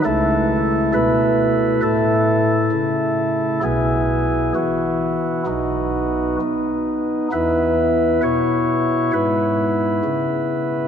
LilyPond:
<<
  \new Staff \with { instrumentName = "Pipe organ" } { \time 4/4 \key e \major \tempo 4 = 66 << { a'4 b'4 a'2 | gis'4 fis'2 r4 | b'4 cis''4 b'2 | } \\ { <a e'>1 | <b e'>2 <b dis'>2 | <b e'>1 | } >> }
  \new Staff \with { instrumentName = "Pipe organ" } { \clef bass \time 4/4 \key e \major <cis, cis>4 b,4 a,4 cis4 | <b,, b,>4 e4 <b,, b,>4 b4 | <e, e>4 b,4 gis,4 cis4 | }
>>